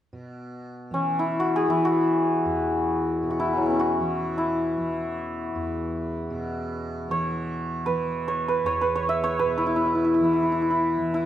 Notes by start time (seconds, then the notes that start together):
0.13 B2
0.91 E3 C#4
1.19 E4
1.40 F#4
1.56 G#4
1.68 E3 E4
1.85 F#4
2.45 E2
3.23 B2
3.31 F#4
3.40 E4
3.53 E3
3.57 F#3
3.62 G#3 B3
3.70 C#4
3.74 E4
3.79 F#4
4.00 E3
4.38 E4
4.77 E3
5.55 E2
6.30 B2
7.08 E3 C#5
7.86 E3 B4
8.28 C#5
8.48 B4
8.64 E2 C#5
8.81 B4
8.95 C#5
9.09 E5
9.24 C#5
9.39 B2 B4
9.58 E4
9.67 E4
9.76 E4
9.86 E4
9.95 E4
10.04 E4
10.14 E4
10.20 E3 E4
10.33 E4
10.43 E4
10.52 E4
10.62 E4
10.70 E4
10.97 E3
11.14 E4